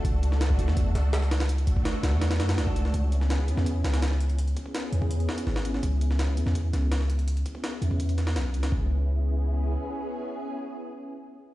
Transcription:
<<
  \new Staff \with { instrumentName = "String machine" } { \time 4/4 \key cis \phrygian \tempo 4 = 166 <a d' fis' a'>2~ <a d' fis' a'>8 <a d' fis' a'>16 r4 r16 | <a d' fis' a'>2~ <a d' fis' a'>8 <a d' fis' a'>16 <a d' fis' a'>4~ <a d' fis' a'>16 | <b cis' e' gis'>2~ <b cis' e' gis'>8 <b cis' e' gis'>16 r4 r16 | <b cis' e' gis'>2.~ <b cis' e' gis'>8 <b cis' e' gis'>8 |
<b cis' e' gis'>2~ <b cis' e' gis'>8 <b cis' e' gis'>16 r4 r16 | <b cis' e' gis'>2.~ <b cis' e' gis'>8 <b cis' e' gis'>8 | <b cis' e' gis'>1~ | <b cis' e' gis'>1 | }
  \new Staff \with { instrumentName = "808-style bass" } { \clef bass \time 4/4 \key cis \phrygian cis,4. cis,16 e,8. cis,4.~ | cis,8 r4 cis,16 e,8. fis,8 cis,4 | cis,4. e,16 e,8. cis,4.~ | cis,8 r4 e,16 e,8. r8 gis,,4 |
cis,4. e,16 e,8. cis,4.~ | cis,8 r4 e,16 e,4~ e,16 b,,8 cis,8 | cis,2. r4 | r1 | }
  \new DrumStaff \with { instrumentName = "Drums" } \drummode { \time 4/4 <hh bd>8 hh16 sn16 <hh sn>16 bd16 hh16 sn16 <hh bd>8 <hh sn>8 <hh sn>16 sn16 <hh sn>16 <hh sn>16 | hh16 hh16 <hh bd>16 bd16 <hh sn>8 <hh sn>8 <hh sn>16 <hh sn>16 <hh sn>16 <hh sn>16 <hh sn>16 bd16 hh16 sn16 | <hh bd>8 hh16 sn16 <hh sn>16 bd16 hh16 sn16 <hh bd>8 <hh sn>16 <hh sn>16 <hh sn>16 sn16 hh16 hh16 | hh16 hh16 <hh bd>16 bd16 <hh sn>8 hh16 bd16 hh16 hh16 sn16 hh16 sn16 sn16 hh16 sn16 |
<hh bd>8 hh16 sn16 <hh sn>16 bd16 hh16 sn16 <hh bd>8 <hh sn>8 <hh sn>16 sn16 hh16 hh16 | hh16 hh16 <hh bd>16 bd16 <hh sn>8 hh16 bd16 hh16 hh16 <hh sn>16 sn16 <hh sn>8 hh16 <hh sn>16 | bd4 r4 r4 r4 | r4 r4 r4 r4 | }
>>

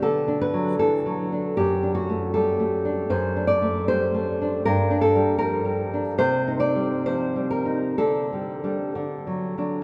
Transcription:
\new Staff \with { instrumentName = "Nylon-string guitar" } { \time 2/4 \key d \mixolydian \tempo 4 = 77 << { a'8 b'8 a'4 | g'8 fis'8 a'4 | \key d \phrygian c''8 d''8 c''4 | bes'8 a'8 bes'4 |
c''8 d''8 c''8 bes'8 | a'4 r4 | } \\ { \tuplet 3/2 { d8 d'8 fis8 e8 fis8 d'8 } | \tuplet 3/2 { fis,8 d'8 a8 g8 a8 d'8 } | \tuplet 3/2 { fis,8 d'8 a8 g8 a8 d'8 } | \tuplet 3/2 { g,8 d'8 g8 f8 g8 d'8 } |
\tuplet 3/2 { c8 ees'8 g8 f8 g8 ees'8 } | \tuplet 3/2 { d8 g8 <g d'>8 d8 fis8 <fis d'>8 } | } >> }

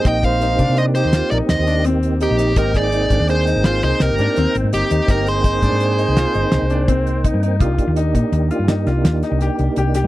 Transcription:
<<
  \new Staff \with { instrumentName = "Lead electric guitar" } { \time 7/4 \key c \minor \tempo 4 = 167 g''8 f''4. ees''8 c''4 d''8 ees''4 r4 g'4 | bes'8 d''4. c''4 c''8 c''8 bes'4. r8 g'4 | bes'8 c''1~ c''4. r4 | r1. r4 | }
  \new Staff \with { instrumentName = "Flugelhorn" } { \time 7/4 \key c \minor ees''8 c''4. c''8 g'4 bes'8 c''4 r4 ees'4 | g'8 aes'4. aes'4 aes'8 aes'8 g'4. r8 ees'4 | g'8 aes'1~ aes'4. r4 | r1. r4 | }
  \new Staff \with { instrumentName = "Grand piano" } { \time 7/4 \key c \minor ees'4 ees'8 d'4 ees'8 f'8 ees'4 d'8 c'4 ees'8 ees'8 | ees'4 ees'8 d'4 ees'8 f'8 ees'4 d'8 c'4 ees'8 ees'8 | ees'4 ees'8 d'4 ees'8 f'8 ees'4 d'8 c'4 ees'8 ees'8 | f'4 ees'8 ees'4 f'8 ees'8 f'4 ees'8 g'4 g'8 g'8 | }
  \new Staff \with { instrumentName = "Tonewheel organ" } { \time 7/4 \key c \minor <bes c' ees' g'>1.~ <bes c' ees' g'>4 | <bes c' ees' g''>1.~ <bes c' ees' g''>4~ | <bes c' ees' g''>1.~ <bes c' ees' g''>4 | <bes d' ees' g'>1.~ <bes d' ees' g'>4 | }
  \new Staff \with { instrumentName = "Fingered electric bass" } { \clef bass \time 7/4 \key c \minor bes,,4. c16 c4 ees,8 r16 bes,,16 r16 ees,16 ees,2 bes,,8. | aes,,4. aes,,16 ees,4 aes,,8. c,16 r16 c,16 g,,16 aes,16 r16 ees,16 r16 aes,,16 aes,16 g,,16 r16 ees,16 r16 | g,,4. aes,16 aes,4 c,8 r16 g,,16 r16 c,16 c,2 g,8. | c,8 r16 ees,8. bes,16 r16 ees,8 r16 g,8. c,8 ees,8 r16 c,8 r16 c,16 r16 c,8. g,16 | }
  \new DrumStaff \with { instrumentName = "Drums" } \drummode { \time 7/4 <hh bd>8 <hh bd>8 <hh sn>8 <hh bd>8 hh8 hh8 <hh sn>8 hh8 <hh sn>8 hh8 hh8 hh8 hh8 <hh sn>8 | <hh bd>8 <hh bd sn>8 hh8 <hh bd>8 hh8 <hh sn>8 <hh sn>8 <hh sn>8 <hh sn>8 hh8 hh8 hh8 hh8 hh8 | <hh bd>8 hh8 <hh bd>8 <hh bd>8 hh8 hh8 <hh sn>8 hh8 <hh sn>8 hh8 <hh bd>8 hh8 <hh bd>8 hh8 | <hh bd>8 <hh bd>8 hh8 <hh bd>8 hh8 hh8 <hh sn>8 <hh sn>8 <hh sn>8 <hh sn>8 <hh sn>8 hh8 hh8 <hh sn>8 | }
>>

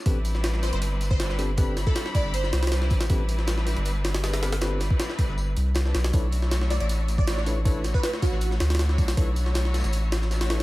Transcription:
<<
  \new Staff \with { instrumentName = "Digital synth lead" } { \time 4/4 \key a \dorian \tempo 4 = 158 r4. c''16 c''16 r8. c''8 r8. | r8. a'8. d''8 c''4. r8 | r1 | r1 |
r4. d''16 d''16 r8. d''8 r8. | r8. b'16 b'16 r16 fis'8. r4. r16 | r1 | }
  \new Staff \with { instrumentName = "Tine electric piano" } { \time 4/4 \key a \dorian <c' d' g' a' b'>8 r2. <c' d' g' a' b'>8 | <c' d' g' a' b'>8 r2. r8 | <c' d' g' a' b'>8 r2. <c' d' g' a' b'>8 | <c' d' g' a' b'>8 r2. r8 |
<d' e' a' b' cis''>8 r2. <d' e' a' b' cis''>8 | <d' e' a' b' cis''>8 r2. r8 | <d' e' a' b' cis''>8 r2. <d' e' a' b' cis''>8 | }
  \new Staff \with { instrumentName = "String section" } { \time 4/4 \key a \dorian <g c' d' e' b'>2. <g c' d' e' b'>4 | <g c' d' e' b''>2. <g c' d' e' b'>4 | <g c' d' e' b'>2. <g c' d' e' b'>4 | <g c' d' e' b'>2. r16 <g c' d' e' b'>16 r8 |
<a d' e' fis' cis''>2. <a d' e' fis' cis''>4 | <a d' e' fis' cis''>2. <a d' e' fis' cis''>4 | <a d' e' fis' cis''>2. <a d' e' fis' cis''>4 | }
  \new Staff \with { instrumentName = "Sub bass" } { \clef bass \time 4/4 \key a \dorian a,,4.~ a,,16 g,,2~ g,,16~ | g,,8. r4 g,,8. c,4 a,,8 | a,,4.~ a,,16 g,,2~ g,,16~ | g,,8. r4 g,,8. c,4 b,,8 |
b,,4.~ b,,16 a,,2~ a,,16~ | a,,8. r4 a,,8. d,4 b,,8 | b,,4.~ b,,16 a,,2~ a,,16 | }
  \new DrumStaff \with { instrumentName = "Drums" } \drummode { \time 4/4 <hho bd tamb>8 <hho tamb>16 <hh sn>16 <hho sn tamb>16 sn16 <hho sn tamb>16 hh16 <hho tamb>16 hh16 <hho tamb>16 <hh bd>16 <hho sn tamb>16 sn16 <hho tamb>8 | <hho bd tamb>8 <hho sn tamb>16 <hh bd>16 <hho sn tamb>16 sn16 <hho bd tamb>16 sn16 <hho tamb>16 sn16 <hho sn tamb>16 <hho sn>32 <hho sn>32 <hho sn tamb>16 sn16 <hho bd tamb>16 <hho sn tamb>16 | <hho bd tamb>8 <hho tamb>16 <hh sn>16 <hho sn tamb>16 sn16 <hho sn tamb>16 hh16 <hho tamb>16 hh16 <hho sn tamb>16 <hho sn>16 <hho sn tamb>16 <hho sn>16 <hho sn tamb>16 <hho sn>16 | <hho sn tamb>8 <hho sn tamb>16 <hh bd>16 <hho sn tamb>16 sn16 <hho bd tamb>16 sn16 tamb8 <hho tamb>16 hh16 <hho sn tamb>16 sn16 <hho sn tamb>16 <hho sn>16 |
<hho bd tamb>8 <hho tamb>16 <hh sn>16 <hho sn tamb>16 sn16 <hho sn tamb>16 hh16 <hho tamb>16 hh16 <hho tamb>16 <hh bd>16 <hho sn tamb>16 sn16 <hho tamb>8 | <hho bd tamb>8 <hho sn tamb>16 <hh bd>16 <hho sn tamb>16 sn16 <hho bd tamb>16 sn16 <hho tamb>16 sn16 <hho sn tamb>16 <hho sn>32 <hho sn>32 <hho sn tamb>16 sn16 <hho bd tamb>16 <hho sn tamb>16 | <hho bd tamb>8 <hho tamb>16 <hh sn>16 <hho sn tamb>16 sn16 <hho sn tamb>32 <sn tamb>32 <hh sn tamb>16 <hho tamb>16 hh16 <hho sn tamb>16 <hh sn>16 <hho sn tamb>16 <hho sn>16 <hho sn tamb>8 | }
>>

